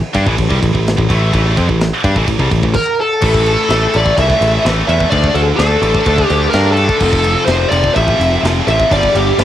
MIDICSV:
0, 0, Header, 1, 5, 480
1, 0, Start_track
1, 0, Key_signature, 0, "minor"
1, 0, Tempo, 473186
1, 1345, Time_signature, 4, 2, 24, 8
1, 9576, End_track
2, 0, Start_track
2, 0, Title_t, "Lead electric guitar"
2, 0, Program_c, 0, 29
2, 2787, Note_on_c, 0, 70, 76
2, 3034, Note_off_c, 0, 70, 0
2, 3050, Note_on_c, 0, 69, 85
2, 4023, Note_on_c, 0, 74, 102
2, 4027, Note_off_c, 0, 69, 0
2, 4244, Note_off_c, 0, 74, 0
2, 4248, Note_on_c, 0, 76, 109
2, 4685, Note_off_c, 0, 76, 0
2, 4947, Note_on_c, 0, 76, 108
2, 5174, Note_off_c, 0, 76, 0
2, 5178, Note_on_c, 0, 74, 118
2, 5406, Note_off_c, 0, 74, 0
2, 5418, Note_on_c, 0, 69, 100
2, 5484, Note_off_c, 0, 69, 0
2, 5647, Note_on_c, 0, 69, 97
2, 6357, Note_off_c, 0, 69, 0
2, 6357, Note_on_c, 0, 67, 97
2, 6588, Note_off_c, 0, 67, 0
2, 6592, Note_on_c, 0, 70, 99
2, 6807, Note_off_c, 0, 70, 0
2, 6811, Note_on_c, 0, 69, 83
2, 7558, Note_off_c, 0, 69, 0
2, 7562, Note_on_c, 0, 72, 92
2, 7797, Note_on_c, 0, 74, 94
2, 7823, Note_off_c, 0, 72, 0
2, 8054, Note_off_c, 0, 74, 0
2, 8058, Note_on_c, 0, 76, 103
2, 8509, Note_off_c, 0, 76, 0
2, 8803, Note_on_c, 0, 76, 107
2, 9043, Note_off_c, 0, 76, 0
2, 9052, Note_on_c, 0, 74, 106
2, 9282, Note_on_c, 0, 67, 110
2, 9287, Note_off_c, 0, 74, 0
2, 9522, Note_off_c, 0, 67, 0
2, 9533, Note_on_c, 0, 67, 92
2, 9576, Note_off_c, 0, 67, 0
2, 9576, End_track
3, 0, Start_track
3, 0, Title_t, "Distorted electric guitar"
3, 0, Program_c, 1, 30
3, 136, Note_on_c, 1, 55, 97
3, 140, Note_on_c, 1, 62, 111
3, 253, Note_off_c, 1, 55, 0
3, 255, Note_off_c, 1, 62, 0
3, 259, Note_on_c, 1, 45, 113
3, 265, Note_on_c, 1, 52, 112
3, 359, Note_off_c, 1, 45, 0
3, 359, Note_off_c, 1, 52, 0
3, 371, Note_on_c, 1, 45, 61
3, 371, Note_on_c, 1, 52, 76
3, 488, Note_off_c, 1, 45, 0
3, 492, Note_on_c, 1, 48, 110
3, 497, Note_off_c, 1, 52, 0
3, 501, Note_on_c, 1, 55, 103
3, 611, Note_off_c, 1, 48, 0
3, 615, Note_off_c, 1, 55, 0
3, 616, Note_on_c, 1, 45, 76
3, 619, Note_on_c, 1, 52, 74
3, 728, Note_off_c, 1, 45, 0
3, 731, Note_off_c, 1, 52, 0
3, 740, Note_on_c, 1, 45, 78
3, 743, Note_on_c, 1, 52, 71
3, 934, Note_off_c, 1, 45, 0
3, 936, Note_off_c, 1, 52, 0
3, 976, Note_on_c, 1, 45, 71
3, 981, Note_on_c, 1, 52, 91
3, 1093, Note_off_c, 1, 45, 0
3, 1100, Note_off_c, 1, 52, 0
3, 1105, Note_on_c, 1, 45, 97
3, 1112, Note_on_c, 1, 52, 114
3, 1123, Note_on_c, 1, 57, 110
3, 1324, Note_off_c, 1, 45, 0
3, 1335, Note_off_c, 1, 52, 0
3, 1336, Note_on_c, 1, 45, 99
3, 1338, Note_off_c, 1, 57, 0
3, 1347, Note_on_c, 1, 52, 107
3, 1350, Note_on_c, 1, 57, 99
3, 1574, Note_off_c, 1, 45, 0
3, 1579, Note_off_c, 1, 52, 0
3, 1580, Note_off_c, 1, 57, 0
3, 1581, Note_on_c, 1, 53, 92
3, 1591, Note_on_c, 1, 60, 119
3, 1696, Note_off_c, 1, 53, 0
3, 1701, Note_off_c, 1, 60, 0
3, 1712, Note_on_c, 1, 45, 77
3, 1714, Note_on_c, 1, 52, 71
3, 1901, Note_off_c, 1, 45, 0
3, 1902, Note_off_c, 1, 52, 0
3, 2072, Note_on_c, 1, 55, 115
3, 2080, Note_on_c, 1, 62, 123
3, 2182, Note_off_c, 1, 55, 0
3, 2186, Note_off_c, 1, 62, 0
3, 2190, Note_on_c, 1, 45, 108
3, 2202, Note_on_c, 1, 52, 105
3, 2301, Note_off_c, 1, 45, 0
3, 2307, Note_off_c, 1, 52, 0
3, 2313, Note_on_c, 1, 45, 74
3, 2320, Note_on_c, 1, 52, 66
3, 2426, Note_off_c, 1, 45, 0
3, 2430, Note_on_c, 1, 48, 99
3, 2432, Note_off_c, 1, 52, 0
3, 2436, Note_on_c, 1, 55, 108
3, 2535, Note_off_c, 1, 48, 0
3, 2538, Note_off_c, 1, 55, 0
3, 2539, Note_on_c, 1, 45, 70
3, 2542, Note_on_c, 1, 52, 72
3, 2651, Note_off_c, 1, 52, 0
3, 2655, Note_off_c, 1, 45, 0
3, 2664, Note_on_c, 1, 52, 73
3, 2667, Note_on_c, 1, 45, 72
3, 2785, Note_off_c, 1, 52, 0
3, 2787, Note_off_c, 1, 45, 0
3, 3258, Note_on_c, 1, 45, 99
3, 3262, Note_on_c, 1, 52, 84
3, 3267, Note_on_c, 1, 57, 96
3, 3729, Note_off_c, 1, 45, 0
3, 3736, Note_off_c, 1, 52, 0
3, 3741, Note_on_c, 1, 45, 89
3, 3748, Note_on_c, 1, 52, 96
3, 3751, Note_off_c, 1, 57, 0
3, 3755, Note_on_c, 1, 57, 104
3, 3966, Note_off_c, 1, 45, 0
3, 3974, Note_off_c, 1, 52, 0
3, 3978, Note_on_c, 1, 45, 89
3, 3984, Note_off_c, 1, 57, 0
3, 3986, Note_on_c, 1, 52, 88
3, 3988, Note_on_c, 1, 57, 105
3, 4200, Note_off_c, 1, 45, 0
3, 4207, Note_off_c, 1, 52, 0
3, 4212, Note_on_c, 1, 45, 91
3, 4219, Note_on_c, 1, 52, 105
3, 4222, Note_off_c, 1, 57, 0
3, 4226, Note_on_c, 1, 57, 115
3, 4693, Note_off_c, 1, 45, 0
3, 4698, Note_off_c, 1, 52, 0
3, 4705, Note_on_c, 1, 45, 87
3, 4710, Note_on_c, 1, 52, 105
3, 4715, Note_off_c, 1, 57, 0
3, 4719, Note_on_c, 1, 57, 95
3, 4923, Note_off_c, 1, 45, 0
3, 4931, Note_off_c, 1, 52, 0
3, 4935, Note_on_c, 1, 45, 106
3, 4943, Note_on_c, 1, 52, 101
3, 4944, Note_off_c, 1, 57, 0
3, 4948, Note_on_c, 1, 57, 105
3, 5167, Note_off_c, 1, 45, 0
3, 5171, Note_off_c, 1, 52, 0
3, 5174, Note_on_c, 1, 50, 100
3, 5182, Note_off_c, 1, 57, 0
3, 5182, Note_on_c, 1, 57, 95
3, 5189, Note_on_c, 1, 62, 110
3, 5653, Note_off_c, 1, 50, 0
3, 5665, Note_on_c, 1, 50, 89
3, 5666, Note_off_c, 1, 62, 0
3, 5673, Note_off_c, 1, 57, 0
3, 5677, Note_on_c, 1, 57, 105
3, 5678, Note_on_c, 1, 62, 96
3, 5891, Note_off_c, 1, 50, 0
3, 5897, Note_off_c, 1, 62, 0
3, 5900, Note_off_c, 1, 57, 0
3, 5903, Note_on_c, 1, 50, 98
3, 5905, Note_on_c, 1, 57, 104
3, 5909, Note_on_c, 1, 62, 99
3, 6130, Note_off_c, 1, 50, 0
3, 6139, Note_off_c, 1, 57, 0
3, 6142, Note_on_c, 1, 50, 92
3, 6144, Note_off_c, 1, 62, 0
3, 6152, Note_on_c, 1, 57, 91
3, 6156, Note_on_c, 1, 62, 100
3, 6619, Note_off_c, 1, 50, 0
3, 6631, Note_on_c, 1, 50, 80
3, 6632, Note_off_c, 1, 57, 0
3, 6634, Note_off_c, 1, 62, 0
3, 6644, Note_on_c, 1, 57, 100
3, 6646, Note_on_c, 1, 62, 99
3, 6856, Note_off_c, 1, 50, 0
3, 6864, Note_off_c, 1, 57, 0
3, 6868, Note_on_c, 1, 50, 101
3, 6871, Note_off_c, 1, 62, 0
3, 6876, Note_on_c, 1, 57, 117
3, 6883, Note_on_c, 1, 62, 102
3, 7094, Note_off_c, 1, 50, 0
3, 7097, Note_on_c, 1, 41, 106
3, 7098, Note_off_c, 1, 57, 0
3, 7101, Note_off_c, 1, 62, 0
3, 7104, Note_on_c, 1, 48, 111
3, 7110, Note_on_c, 1, 53, 105
3, 7582, Note_off_c, 1, 41, 0
3, 7589, Note_off_c, 1, 48, 0
3, 7594, Note_off_c, 1, 53, 0
3, 7595, Note_on_c, 1, 41, 89
3, 7601, Note_on_c, 1, 48, 99
3, 7606, Note_on_c, 1, 53, 90
3, 7822, Note_off_c, 1, 41, 0
3, 7825, Note_off_c, 1, 48, 0
3, 7834, Note_on_c, 1, 41, 94
3, 7837, Note_off_c, 1, 53, 0
3, 7837, Note_on_c, 1, 48, 99
3, 7849, Note_on_c, 1, 53, 106
3, 8060, Note_off_c, 1, 41, 0
3, 8071, Note_off_c, 1, 48, 0
3, 8072, Note_on_c, 1, 41, 113
3, 8078, Note_off_c, 1, 53, 0
3, 8084, Note_on_c, 1, 48, 100
3, 8090, Note_on_c, 1, 53, 121
3, 8543, Note_off_c, 1, 41, 0
3, 8551, Note_off_c, 1, 48, 0
3, 8552, Note_off_c, 1, 53, 0
3, 8555, Note_on_c, 1, 41, 89
3, 8563, Note_on_c, 1, 48, 91
3, 8564, Note_on_c, 1, 53, 93
3, 8783, Note_off_c, 1, 41, 0
3, 8788, Note_off_c, 1, 48, 0
3, 8796, Note_on_c, 1, 41, 94
3, 8798, Note_off_c, 1, 53, 0
3, 8800, Note_on_c, 1, 48, 92
3, 8810, Note_on_c, 1, 53, 93
3, 9018, Note_off_c, 1, 41, 0
3, 9020, Note_off_c, 1, 48, 0
3, 9025, Note_off_c, 1, 53, 0
3, 9036, Note_on_c, 1, 43, 99
3, 9047, Note_on_c, 1, 50, 102
3, 9047, Note_on_c, 1, 55, 108
3, 9499, Note_off_c, 1, 43, 0
3, 9511, Note_off_c, 1, 50, 0
3, 9511, Note_off_c, 1, 55, 0
3, 9511, Note_on_c, 1, 43, 94
3, 9523, Note_on_c, 1, 50, 92
3, 9524, Note_on_c, 1, 55, 100
3, 9576, Note_off_c, 1, 43, 0
3, 9576, Note_off_c, 1, 50, 0
3, 9576, Note_off_c, 1, 55, 0
3, 9576, End_track
4, 0, Start_track
4, 0, Title_t, "Picked electric bass"
4, 0, Program_c, 2, 34
4, 152, Note_on_c, 2, 43, 104
4, 260, Note_off_c, 2, 43, 0
4, 267, Note_on_c, 2, 33, 112
4, 378, Note_off_c, 2, 33, 0
4, 391, Note_on_c, 2, 33, 77
4, 500, Note_off_c, 2, 33, 0
4, 513, Note_on_c, 2, 36, 101
4, 621, Note_off_c, 2, 36, 0
4, 633, Note_on_c, 2, 33, 85
4, 741, Note_off_c, 2, 33, 0
4, 752, Note_on_c, 2, 33, 89
4, 972, Note_off_c, 2, 33, 0
4, 994, Note_on_c, 2, 33, 101
4, 1102, Note_off_c, 2, 33, 0
4, 1113, Note_on_c, 2, 33, 96
4, 1333, Note_off_c, 2, 33, 0
4, 1353, Note_on_c, 2, 33, 100
4, 1573, Note_off_c, 2, 33, 0
4, 1596, Note_on_c, 2, 41, 106
4, 1703, Note_off_c, 2, 41, 0
4, 1715, Note_on_c, 2, 33, 71
4, 1934, Note_off_c, 2, 33, 0
4, 2070, Note_on_c, 2, 43, 101
4, 2180, Note_off_c, 2, 43, 0
4, 2195, Note_on_c, 2, 33, 106
4, 2300, Note_off_c, 2, 33, 0
4, 2306, Note_on_c, 2, 33, 69
4, 2418, Note_off_c, 2, 33, 0
4, 2425, Note_on_c, 2, 36, 106
4, 2537, Note_off_c, 2, 36, 0
4, 2549, Note_on_c, 2, 33, 82
4, 2659, Note_off_c, 2, 33, 0
4, 2673, Note_on_c, 2, 33, 89
4, 2781, Note_off_c, 2, 33, 0
4, 3268, Note_on_c, 2, 33, 104
4, 3605, Note_off_c, 2, 33, 0
4, 3743, Note_on_c, 2, 33, 88
4, 3913, Note_off_c, 2, 33, 0
4, 4005, Note_on_c, 2, 33, 100
4, 4167, Note_off_c, 2, 33, 0
4, 4240, Note_on_c, 2, 36, 98
4, 4404, Note_off_c, 2, 36, 0
4, 4474, Note_on_c, 2, 33, 93
4, 4640, Note_off_c, 2, 33, 0
4, 4717, Note_on_c, 2, 33, 103
4, 4883, Note_off_c, 2, 33, 0
4, 4953, Note_on_c, 2, 40, 88
4, 5120, Note_off_c, 2, 40, 0
4, 5193, Note_on_c, 2, 38, 91
4, 5359, Note_off_c, 2, 38, 0
4, 5421, Note_on_c, 2, 38, 89
4, 5592, Note_off_c, 2, 38, 0
4, 5668, Note_on_c, 2, 38, 89
4, 5837, Note_off_c, 2, 38, 0
4, 5901, Note_on_c, 2, 33, 103
4, 6072, Note_off_c, 2, 33, 0
4, 6157, Note_on_c, 2, 38, 95
4, 6323, Note_off_c, 2, 38, 0
4, 6393, Note_on_c, 2, 38, 99
4, 6560, Note_off_c, 2, 38, 0
4, 6633, Note_on_c, 2, 43, 100
4, 6969, Note_off_c, 2, 43, 0
4, 7110, Note_on_c, 2, 29, 101
4, 7447, Note_off_c, 2, 29, 0
4, 7581, Note_on_c, 2, 29, 97
4, 7752, Note_off_c, 2, 29, 0
4, 7824, Note_on_c, 2, 29, 106
4, 7994, Note_off_c, 2, 29, 0
4, 8077, Note_on_c, 2, 33, 87
4, 8243, Note_off_c, 2, 33, 0
4, 8313, Note_on_c, 2, 29, 92
4, 8480, Note_off_c, 2, 29, 0
4, 8555, Note_on_c, 2, 29, 90
4, 8721, Note_off_c, 2, 29, 0
4, 8796, Note_on_c, 2, 33, 88
4, 8962, Note_off_c, 2, 33, 0
4, 9040, Note_on_c, 2, 31, 107
4, 9204, Note_off_c, 2, 31, 0
4, 9278, Note_on_c, 2, 31, 87
4, 9443, Note_off_c, 2, 31, 0
4, 9516, Note_on_c, 2, 31, 90
4, 9576, Note_off_c, 2, 31, 0
4, 9576, End_track
5, 0, Start_track
5, 0, Title_t, "Drums"
5, 145, Note_on_c, 9, 51, 87
5, 149, Note_on_c, 9, 36, 113
5, 246, Note_off_c, 9, 51, 0
5, 251, Note_off_c, 9, 36, 0
5, 270, Note_on_c, 9, 36, 92
5, 371, Note_off_c, 9, 36, 0
5, 386, Note_on_c, 9, 51, 124
5, 390, Note_on_c, 9, 36, 110
5, 488, Note_off_c, 9, 51, 0
5, 492, Note_off_c, 9, 36, 0
5, 512, Note_on_c, 9, 36, 82
5, 614, Note_off_c, 9, 36, 0
5, 636, Note_on_c, 9, 36, 93
5, 642, Note_on_c, 9, 51, 89
5, 737, Note_off_c, 9, 36, 0
5, 744, Note_off_c, 9, 51, 0
5, 759, Note_on_c, 9, 36, 90
5, 860, Note_off_c, 9, 36, 0
5, 887, Note_on_c, 9, 51, 103
5, 893, Note_on_c, 9, 38, 102
5, 988, Note_off_c, 9, 51, 0
5, 994, Note_off_c, 9, 38, 0
5, 997, Note_on_c, 9, 36, 88
5, 1098, Note_off_c, 9, 36, 0
5, 1116, Note_on_c, 9, 36, 93
5, 1118, Note_on_c, 9, 51, 79
5, 1217, Note_off_c, 9, 36, 0
5, 1220, Note_off_c, 9, 51, 0
5, 1354, Note_on_c, 9, 36, 116
5, 1354, Note_on_c, 9, 51, 117
5, 1455, Note_off_c, 9, 36, 0
5, 1456, Note_off_c, 9, 51, 0
5, 1595, Note_on_c, 9, 36, 120
5, 1603, Note_on_c, 9, 51, 80
5, 1696, Note_off_c, 9, 36, 0
5, 1704, Note_off_c, 9, 51, 0
5, 1714, Note_on_c, 9, 36, 99
5, 1816, Note_off_c, 9, 36, 0
5, 1834, Note_on_c, 9, 51, 91
5, 1841, Note_on_c, 9, 38, 95
5, 1936, Note_off_c, 9, 51, 0
5, 1942, Note_off_c, 9, 38, 0
5, 2069, Note_on_c, 9, 51, 78
5, 2072, Note_on_c, 9, 36, 114
5, 2171, Note_off_c, 9, 51, 0
5, 2173, Note_off_c, 9, 36, 0
5, 2190, Note_on_c, 9, 36, 96
5, 2292, Note_off_c, 9, 36, 0
5, 2310, Note_on_c, 9, 36, 108
5, 2311, Note_on_c, 9, 51, 105
5, 2412, Note_off_c, 9, 36, 0
5, 2412, Note_off_c, 9, 51, 0
5, 2430, Note_on_c, 9, 36, 89
5, 2531, Note_off_c, 9, 36, 0
5, 2549, Note_on_c, 9, 51, 86
5, 2550, Note_on_c, 9, 36, 102
5, 2651, Note_off_c, 9, 51, 0
5, 2652, Note_off_c, 9, 36, 0
5, 2670, Note_on_c, 9, 36, 88
5, 2771, Note_off_c, 9, 36, 0
5, 2779, Note_on_c, 9, 49, 102
5, 2786, Note_on_c, 9, 36, 103
5, 2880, Note_off_c, 9, 49, 0
5, 2888, Note_off_c, 9, 36, 0
5, 3260, Note_on_c, 9, 49, 127
5, 3268, Note_on_c, 9, 36, 127
5, 3362, Note_off_c, 9, 49, 0
5, 3369, Note_off_c, 9, 36, 0
5, 3391, Note_on_c, 9, 36, 106
5, 3492, Note_off_c, 9, 36, 0
5, 3510, Note_on_c, 9, 51, 87
5, 3612, Note_off_c, 9, 51, 0
5, 3754, Note_on_c, 9, 51, 124
5, 3760, Note_on_c, 9, 38, 110
5, 3856, Note_off_c, 9, 51, 0
5, 3862, Note_off_c, 9, 38, 0
5, 3992, Note_on_c, 9, 51, 82
5, 4094, Note_off_c, 9, 51, 0
5, 4115, Note_on_c, 9, 36, 93
5, 4217, Note_off_c, 9, 36, 0
5, 4237, Note_on_c, 9, 36, 111
5, 4242, Note_on_c, 9, 51, 117
5, 4338, Note_off_c, 9, 36, 0
5, 4343, Note_off_c, 9, 51, 0
5, 4359, Note_on_c, 9, 36, 85
5, 4460, Note_off_c, 9, 36, 0
5, 4481, Note_on_c, 9, 51, 88
5, 4583, Note_off_c, 9, 51, 0
5, 4725, Note_on_c, 9, 51, 100
5, 4731, Note_on_c, 9, 38, 119
5, 4827, Note_off_c, 9, 51, 0
5, 4833, Note_off_c, 9, 38, 0
5, 4959, Note_on_c, 9, 51, 86
5, 5060, Note_off_c, 9, 51, 0
5, 5076, Note_on_c, 9, 36, 91
5, 5177, Note_off_c, 9, 36, 0
5, 5194, Note_on_c, 9, 36, 107
5, 5196, Note_on_c, 9, 51, 115
5, 5296, Note_off_c, 9, 36, 0
5, 5297, Note_off_c, 9, 51, 0
5, 5314, Note_on_c, 9, 36, 103
5, 5415, Note_off_c, 9, 36, 0
5, 5431, Note_on_c, 9, 51, 80
5, 5533, Note_off_c, 9, 51, 0
5, 5674, Note_on_c, 9, 51, 107
5, 5680, Note_on_c, 9, 38, 114
5, 5775, Note_off_c, 9, 51, 0
5, 5781, Note_off_c, 9, 38, 0
5, 5912, Note_on_c, 9, 51, 90
5, 6013, Note_off_c, 9, 51, 0
5, 6033, Note_on_c, 9, 36, 90
5, 6134, Note_off_c, 9, 36, 0
5, 6146, Note_on_c, 9, 51, 110
5, 6151, Note_on_c, 9, 36, 111
5, 6247, Note_off_c, 9, 51, 0
5, 6253, Note_off_c, 9, 36, 0
5, 6273, Note_on_c, 9, 36, 96
5, 6374, Note_off_c, 9, 36, 0
5, 6391, Note_on_c, 9, 51, 87
5, 6492, Note_off_c, 9, 51, 0
5, 6627, Note_on_c, 9, 51, 109
5, 6633, Note_on_c, 9, 38, 102
5, 6729, Note_off_c, 9, 51, 0
5, 6735, Note_off_c, 9, 38, 0
5, 6866, Note_on_c, 9, 51, 74
5, 6968, Note_off_c, 9, 51, 0
5, 6990, Note_on_c, 9, 36, 100
5, 7091, Note_off_c, 9, 36, 0
5, 7103, Note_on_c, 9, 57, 114
5, 7108, Note_on_c, 9, 36, 120
5, 7205, Note_off_c, 9, 57, 0
5, 7210, Note_off_c, 9, 36, 0
5, 7231, Note_on_c, 9, 36, 111
5, 7332, Note_off_c, 9, 36, 0
5, 7346, Note_on_c, 9, 51, 91
5, 7447, Note_off_c, 9, 51, 0
5, 7581, Note_on_c, 9, 51, 115
5, 7587, Note_on_c, 9, 38, 113
5, 7682, Note_off_c, 9, 51, 0
5, 7688, Note_off_c, 9, 38, 0
5, 7827, Note_on_c, 9, 51, 93
5, 7929, Note_off_c, 9, 51, 0
5, 7952, Note_on_c, 9, 36, 95
5, 8053, Note_off_c, 9, 36, 0
5, 8076, Note_on_c, 9, 36, 112
5, 8078, Note_on_c, 9, 51, 120
5, 8177, Note_off_c, 9, 36, 0
5, 8180, Note_off_c, 9, 51, 0
5, 8197, Note_on_c, 9, 36, 92
5, 8298, Note_off_c, 9, 36, 0
5, 8328, Note_on_c, 9, 51, 84
5, 8429, Note_off_c, 9, 51, 0
5, 8571, Note_on_c, 9, 51, 110
5, 8577, Note_on_c, 9, 38, 112
5, 8673, Note_off_c, 9, 51, 0
5, 8679, Note_off_c, 9, 38, 0
5, 8806, Note_on_c, 9, 51, 80
5, 8908, Note_off_c, 9, 51, 0
5, 8923, Note_on_c, 9, 36, 97
5, 9024, Note_off_c, 9, 36, 0
5, 9043, Note_on_c, 9, 36, 103
5, 9050, Note_on_c, 9, 51, 127
5, 9144, Note_off_c, 9, 36, 0
5, 9151, Note_off_c, 9, 51, 0
5, 9163, Note_on_c, 9, 36, 104
5, 9264, Note_off_c, 9, 36, 0
5, 9286, Note_on_c, 9, 51, 88
5, 9387, Note_off_c, 9, 51, 0
5, 9521, Note_on_c, 9, 51, 105
5, 9527, Note_on_c, 9, 38, 116
5, 9576, Note_off_c, 9, 38, 0
5, 9576, Note_off_c, 9, 51, 0
5, 9576, End_track
0, 0, End_of_file